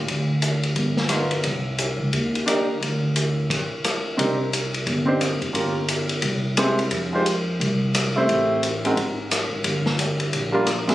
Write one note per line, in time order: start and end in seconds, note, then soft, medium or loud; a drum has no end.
0.08 0.73 D2 medium
0.08 ride medium
0.42 hi-hat pedal medium
0.42 ride medium
0.63 ride soft
0.76 1.41 G1 medium
0.76 ride soft
0.97 snare soft
1.09 1.29 B3 soft
1.09 1.29 D#4 soft
1.09 1.29 F4 soft
1.09 1.29 A#4 medium
1.09 cross-stick medium
1.09 hi-hat pedal medium
1.09 ride medium
1.31 ride soft
1.43 1.96 C2 medium
1.43 ride medium
1.78 hi-hat pedal medium
1.78 ride medium
1.99 2.12 C#2 medium
2.13 2.78 D#2 medium
2.13 ride medium
2.35 ride soft
2.46 2.66 D4 medium
2.46 2.66 D#4 medium
2.46 2.66 G4 medium
2.46 2.67 A#4 medium
2.46 cross-stick medium
2.46 hi-hat pedal medium
2.46 ride medium
2.80 3.46 D2 medium
2.80 ride medium
3.16 hi-hat pedal soft
3.16 ride medium
3.50 kick medium
3.50 crash medium
3.50 ride medium
3.84 cross-stick medium
3.84 hi-hat pedal medium
3.84 ride medium
4.17 4.83 C2 medium
4.17 4.37 C4 medium
4.17 4.37 D4 soft
4.17 4.37 D#4 soft
4.17 4.37 G4 medium
4.17 4.37 A#4 medium
4.17 ride medium
4.53 hi-hat pedal medium
4.53 ride medium
4.74 ride soft
4.86 5.38 G1 medium
4.86 ride soft
5.06 5.18 C4 medium
5.06 5.19 D4 medium
5.06 5.19 D#4 medium
5.06 5.19 G4 medium
5.06 5.20 C5 medium
5.21 cross-stick medium
5.21 hi-hat pedal medium
5.21 ride medium
5.41 5.53 F1 medium
5.41 ride soft
5.53 6.19 G1 medium
5.53 5.73 A#3 soft
5.53 5.73 C#4 soft
5.53 5.73 F4 soft
5.53 5.74 G4 soft
5.53 5.74 A#4 medium
5.53 ride medium
5.88 hi-hat pedal medium
5.88 ride medium
6.09 ride soft
6.22 6.88 C2 medium
6.22 ride medium
6.57 6.76 G#3 medium
6.57 6.77 C4 medium
6.57 6.77 E4 medium
6.57 6.77 G4 medium
6.57 6.77 C5 medium
6.57 cross-stick medium
6.57 hi-hat pedal medium
6.57 ride medium
6.79 ride medium
6.91 7.56 F2 medium
6.91 ride medium
7.13 7.24 G#3 medium
7.13 7.25 D#4 medium
7.13 7.25 F4 medium
7.13 7.25 G4 medium
7.13 7.26 C5 medium
7.26 hi-hat pedal soft
7.26 ride medium
7.60 8.25 C2 medium
7.60 ride medium
7.94 cross-stick medium
7.94 hi-hat pedal medium
7.94 ride medium
8.16 8.60 A3 medium
8.16 8.61 C4 medium
8.16 8.60 E4 medium
8.16 8.61 G4 medium
8.16 8.61 C5 medium
8.29 8.94 A1 medium
8.29 ride medium
8.63 hi-hat pedal soft
8.63 ride medium
8.85 8.96 G#3 medium
8.85 8.96 C4 medium
8.85 8.96 D#4 medium
8.85 8.96 F#4 medium
8.85 8.97 A#4 medium
8.85 ride soft
8.96 9.48 G#1 medium
8.96 ride medium
9.31 cross-stick medium
9.31 hi-hat pedal medium
9.31 ride medium
9.52 9.64 G#1 medium
9.64 10.29 G1 medium
9.64 ride medium
9.86 snare soft
9.99 hi-hat pedal medium
9.99 ride medium
10.20 ride soft
10.33 10.95 A#1 medium
10.33 ride medium
10.52 10.65 G3 medium
10.52 10.65 A#3 medium
10.52 10.65 D4 medium
10.52 10.66 F4 medium
10.52 10.66 A#4 medium
10.66 cross-stick medium
10.66 hi-hat pedal medium
10.66 ride medium
10.88 10.95 F3 medium
10.88 10.95 C4 medium
10.88 10.95 D4 medium
10.88 10.95 E4 medium
10.88 10.95 G#4 medium
10.88 snare soft
10.88 ride soft